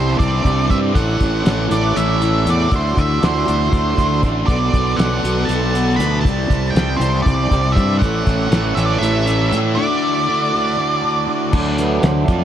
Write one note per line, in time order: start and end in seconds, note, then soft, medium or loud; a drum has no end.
0.00 0.18 C2 medium
0.00 0.16 C3 medium
0.00 0.18 G3 medium
0.00 0.19 C4 medium
0.00 0.92 D4 medium
0.00 2.69 E4 medium
0.00 0.17 C5 medium
0.00 0.94 C5 medium
0.18 0.44 C2 medium
0.18 0.67 C3 medium
0.18 0.45 G3 loud
0.18 0.42 C4 loud
0.18 0.71 D5 medium
0.18 kick loud
0.18 closed hi-hat medium
0.43 0.69 C2 medium
0.43 0.68 G3 medium
0.43 0.70 C4 medium
0.43 kick medium
0.43 closed hi-hat medium
0.68 0.94 G2 medium
0.68 0.93 C3 medium
0.68 0.93 G3 medium
0.68 0.94 C4 medium
0.68 0.77 E5 medium
0.68 kick medium
0.68 closed hi-hat medium
0.93 1.19 A1 medium
0.93 1.42 A2 medium
0.93 1.45 E3 medium
0.93 1.46 A3 medium
0.93 2.70 A4 medium
0.93 2.70 C#5 medium
0.93 1.67 F#5 medium
0.93 kick loud
0.93 closed hi-hat medium
1.21 1.45 A1 medium
1.21 kick medium
1.21 closed hi-hat medium
1.44 1.70 A1 medium
1.44 1.93 A2 medium
1.44 1.71 E3 medium
1.44 1.69 A3 medium
1.44 snare loud
1.44 closed hi-hat medium
1.69 1.95 A1 medium
1.69 1.94 E3 medium
1.69 1.96 A3 medium
1.69 1.97 D5 medium
1.69 snare soft
1.69 closed hi-hat medium
1.94 2.45 A1 medium
1.94 2.44 A2 medium
1.94 2.22 E3 loud
1.94 2.20 A3 medium
1.94 2.48 E5 medium
1.94 closed hi-hat medium
2.20 2.45 E3 medium
2.20 2.48 A3 medium
2.20 closed hi-hat medium
2.45 2.71 E2 medium
2.45 2.69 A2 medium
2.45 2.70 E3 medium
2.45 2.72 A3 medium
2.45 closed hi-hat medium
2.50 2.74 D5 medium
2.71 2.96 D2 medium
2.71 3.20 D3 medium
2.71 3.22 A3 medium
2.71 3.23 D4 medium
2.71 4.46 E4 medium
2.71 4.46 F#4 medium
2.71 7.97 D5 medium
2.71 kick loud
2.71 closed hi-hat medium
2.76 3.00 C5 medium
2.97 3.22 D2 medium
2.97 3.24 E5 medium
2.97 kick medium
2.97 closed hi-hat medium
3.21 3.47 D2 medium
3.21 3.70 D3 medium
3.21 3.48 A3 medium
3.21 3.46 D4 medium
3.21 4.20 C5 medium
3.21 snare loud
3.21 closed hi-hat medium
3.47 3.72 D2 medium
3.47 3.72 A3 medium
3.47 3.73 D4 medium
3.47 closed hi-hat medium
3.72 3.97 D2 medium
3.72 4.21 D3 medium
3.72 3.97 A3 medium
3.72 3.96 D4 medium
3.72 kick medium
3.72 closed hi-hat medium
3.96 4.22 D2 medium
3.96 4.22 A3 soft
3.96 4.24 D4 medium
3.96 kick medium
3.96 closed hi-hat medium
4.22 4.47 A1 medium
4.22 4.46 D3 medium
4.22 4.47 A3 medium
4.22 4.49 D4 medium
4.22 kick medium
4.22 snare soft
4.22 closed hi-hat medium
4.46 4.73 B1 medium
4.46 4.95 B2 medium
4.46 4.96 F#3 medium
4.46 4.98 B3 medium
4.46 6.23 A4 medium
4.46 6.23 B4 medium
4.46 4.99 D5 medium
4.46 kick loud
4.46 closed hi-hat medium
4.74 4.98 B1 medium
4.74 kick medium
4.74 closed hi-hat medium
4.96 5.23 B1 medium
4.96 5.46 B2 medium
4.96 5.23 F#3 medium
4.96 5.21 B3 medium
4.96 5.50 F#5 medium
4.96 snare loud
4.96 closed hi-hat medium
5.22 5.48 B1 medium
5.22 5.47 F#3 medium
5.22 5.49 B3 medium
5.22 closed hi-hat medium
5.45 5.98 B1 medium
5.45 5.97 B2 medium
5.45 5.74 F#3 medium
5.45 5.96 A5 medium
5.45 closed hi-hat medium
5.50 5.72 B3 medium
5.73 5.98 F#3 medium
5.73 5.99 B3 medium
5.73 closed hi-hat medium
5.96 6.24 D2 medium
5.96 6.23 B2 medium
5.96 6.23 F#3 medium
5.96 6.24 B3 medium
5.96 6.20 B5 loud
5.96 closed hi-hat medium
6.01 snare soft
6.21 6.49 C2 medium
6.21 6.73 C3 medium
6.21 6.75 G3 medium
6.21 6.75 A5 medium
6.25 6.76 C4 medium
6.25 11.50 E4 medium
6.25 8.01 C5 medium
6.25 kick loud
6.25 closed hi-hat medium
6.50 6.74 C2 medium
6.50 kick medium
6.50 closed hi-hat medium
6.70 6.99 G5 medium
6.75 6.99 C2 medium
6.75 7.24 C3 medium
6.75 7.01 G3 medium
6.75 6.98 C4 medium
6.75 snare loud
6.75 closed hi-hat medium
6.96 7.25 C2 medium
6.96 7.26 C4 medium
6.96 7.22 C5 medium
7.01 7.25 G3 medium
7.01 closed hi-hat medium
7.22 7.50 C2 medium
7.22 7.75 C3 medium
7.22 7.76 D5 medium
7.22 kick loud
7.26 7.51 G3 medium
7.26 7.49 C4 loud
7.26 snare soft
7.26 closed hi-hat medium
7.51 7.75 C2 medium
7.51 7.77 G3 soft
7.51 7.77 C4 medium
7.51 kick medium
7.51 closed hi-hat medium
7.72 7.98 E5 medium
7.76 8.01 G2 medium
7.76 8.00 C3 medium
7.76 8.01 G3 medium
7.76 8.01 C4 medium
7.76 kick medium
7.76 snare soft
7.76 closed hi-hat medium
7.99 8.26 A1 medium
7.99 8.50 A2 medium
7.99 8.52 E3 medium
7.99 9.76 A4 medium
7.99 9.76 C#5 medium
7.99 8.78 F#5 medium
7.99 kick medium
7.99 closed hi-hat medium
8.04 8.53 A3 loud
8.27 8.50 A1 medium
8.27 kick medium
8.27 closed hi-hat medium
8.51 8.76 A1 medium
8.51 9.00 A2 medium
8.51 8.77 E3 medium
8.51 8.75 A3 medium
8.51 snare loud
8.51 closed hi-hat medium
8.75 9.01 A1 medium
8.75 9.01 E3 medium
8.75 9.03 A3 medium
8.75 8.86 E5 medium
8.75 closed hi-hat medium
8.86 8.99 D5 medium
8.99 9.50 A1 medium
8.99 9.50 A2 medium
8.99 9.28 E3 loud
8.99 9.48 E5 medium
9.03 9.26 A3 medium
9.03 closed hi-hat medium
9.26 9.52 E3 medium
9.26 9.54 A3 medium
9.26 closed hi-hat medium
9.49 9.76 A2 medium
9.49 9.77 A2 medium
9.49 9.76 E3 medium
9.49 9.57 E5 medium
9.49 closed hi-hat medium
9.54 9.78 A3 medium
9.75 10.27 D3 medium
9.75 10.28 A3 medium
9.75 11.23 D5 medium
9.79 10.29 D4 medium
9.79 11.53 F#4 medium
9.79 11.53 D5 medium
10.28 10.76 D3 medium
10.28 10.54 A3 medium
10.28 10.51 D4 medium
10.52 10.77 A3 medium
10.52 10.79 D4 medium
10.77 11.26 D3 medium
10.77 11.03 A3 medium
10.77 11.00 D4 medium
11.02 11.27 A3 medium
11.02 11.28 D4 medium
11.27 11.51 D3 medium
11.27 11.52 A3 medium
11.27 11.52 D4 medium
11.53 12.00 D2 medium
11.53 12.01 D3 medium
11.53 12.44 F#3 medium
11.53 12.02 A3 loud
11.53 12.44 A3 medium
11.53 12.03 D4 medium
11.53 12.44 D4 medium
11.53 kick medium
11.53 crash loud
11.78 12.05 B4 medium
11.78 snare soft
11.78 closed hi-hat medium
12.02 12.27 D2 medium
12.02 12.23 D3 medium
12.02 12.23 A3 medium
12.02 12.23 C5 medium
12.02 snare loud
12.02 closed hi-hat medium
12.24 12.44 F3 medium
12.24 12.44 D5 medium
12.24 12.30 E5 medium
12.24 closed hi-hat medium
12.28 12.44 F2 medium
12.28 12.44 C4 medium
12.28 12.44 F4 loud
12.28 kick loud